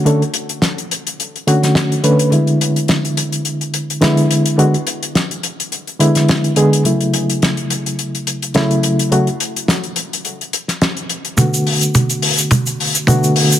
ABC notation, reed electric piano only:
X:1
M:4/4
L:1/16
Q:"Swing 16ths" 1/4=106
K:Bdor
V:1 name="Reed electric piano"
[D,A,CA] z8 z [D,A,CF]4 [D,A,CB]2 | [D,G,B,E]12 [D,G,B,E]4 | [D,G,B,F] z8 z [D,G,B,E]4 [D,G,B,G]2 | [C,F,A,E]12 [C,F,A,E]4 |
[C,F,A,F] z12 z3 | [D,A,B,F]12 [D,A,B,F]4 |]